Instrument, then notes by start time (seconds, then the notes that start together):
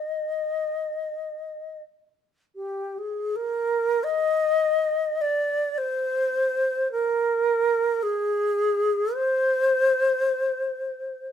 alto flute
Already playing: D#5
2.55 G4
2.98 G#4
3.36 A#4
4.03 D#5
5.21 D5
5.78 C5
6.91 A#4
8.02 G#4
9.14 C5